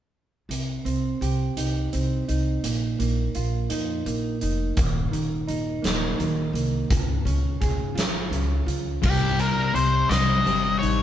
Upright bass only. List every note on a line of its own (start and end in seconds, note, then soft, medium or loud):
0.49 0.80 C2 medium
0.85 1.16 C2 medium
1.21 1.52 C2 medium
1.57 1.87 C2 medium
1.94 2.24 C2 medium
2.29 2.59 C2 medium
2.65 2.95 A#1 medium
3.00 3.30 A#1 medium
3.35 3.65 A#1 medium
3.71 4.01 F2 medium
4.06 4.36 A#1 medium
4.42 4.72 F1 medium
4.77 5.07 D#1 medium
5.13 5.43 D#1 medium
5.49 5.79 D#1 medium
5.84 6.14 D#1 medium
6.19 6.50 D#1 medium
6.53 6.84 C2 medium
6.91 7.21 C#2 medium
7.25 7.56 C#2 medium
7.62 7.92 C#2 medium
7.95 8.27 G#1 medium
8.31 8.62 C#2 medium
8.66 8.98 C#2 medium
9.04 9.65 C2 medium
9.74 10.05 C2 medium
10.09 10.40 C2 medium
10.46 10.77 G1 medium
10.82 11.03 A1 medium